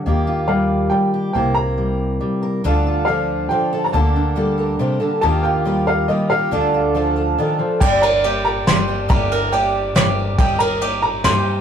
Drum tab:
CC |------|------|------|------|
RD |------|------|------|------|
SD |------|------|------|------|
BD |------|------|------|------|

CC |------|------|x-----|------|
RD |------|------|-xx-x-|xxx-x-|
SD |------|------|----o-|----o-|
BD |------|------|o-----|o-----|

CC |------|
RD |xxx-x-|
SD |----o-|
BD |o-----|